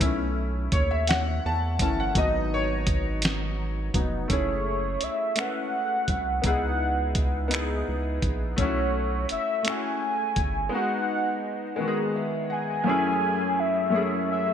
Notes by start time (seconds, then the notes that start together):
0.01 B1 A3 C#4 E4, kick, closed hi-hat
0.72 D#2 C#5, kick, closed hi-hat
0.91 E5
1.07 F#5, snare, closed hi-hat
1.46 E2 A5
1.79 G1 E3 A3 C#4 A5, kick, closed hi-hat
2.00 F#5
2.15 G#1 F#3 B3 D#4 D#5, kick, closed hi-hat
2.54 C#5
2.87 kick, closed hi-hat
3.22 snare, closed hi-hat
3.94 F1 F#3 B3 D#4, kick, closed hi-hat
4.28 F#1 A3 C#4 E4, kick, closed hi-hat
4.32 G#4 C#5
5.01 C2 E5, closed hi-hat
5.35 A3 C#4 E4 F#5, finger snap, closed hi-hat
5.41 B4
6.08 C2, kick, closed hi-hat
6.42 C#2 B3 D#4 E4, kick, closed hi-hat
6.47 G#4 F#5
7.15 kick, closed hi-hat
7.48 B3 D#4 E4, closed hi-hat
7.54 G#4, finger snap
7.89 C#2
8.22 A#1, kick, closed hi-hat
8.56 B1 A3 C#4 E4 C#5, kick, closed hi-hat
8.62 F#4
9.29 G1 E5, closed hi-hat
9.63 A3 C#4, closed hi-hat
9.67 E4 F#4 G#5, finger snap
10.36 G1, kick, closed hi-hat
10.69 G#3 B3 D#4
10.75 F#4 F#5
11.76 D#3 G#3 B3
11.82 F#4
11.88 G#4
12.16 E5
12.50 F#5 G#5
12.84 F#2 A3 C#4 E4
12.89 G#4
13.60 E5
13.90 F#2 A3 C#4
13.94 E4 G#4
14.32 E5